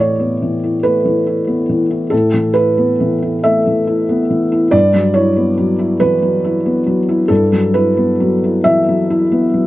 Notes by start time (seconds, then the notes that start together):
Already playing: A2 E3 D5
0.00 E4 C#5
0.19 B3
0.42 E3
0.64 E4
0.83 A3 B4
1.05 E3
1.27 E4
1.47 B3
1.69 E3
1.91 E4
2.10 A2 A4
2.34 E3
2.54 E4 B4
2.78 B3
3.00 E3
3.22 E4
3.44 A3 E5
3.67 E3
3.87 E4
4.09 B3
4.30 E3
4.52 E4
4.71 G2 D5
4.94 F#3
5.14 E4 C#5
5.37 B3
5.58 F#3
5.79 E4
6.00 E3 B4
6.22 F#3
6.44 E4
6.66 B3
6.87 F#3
7.09 E4
7.28 G2 A4
7.52 F#3
7.74 E4 B4
7.97 B3
8.20 F#3
8.44 E4
8.64 E3 E5
8.89 F#3
9.10 E4
9.32 B3
9.54 F#3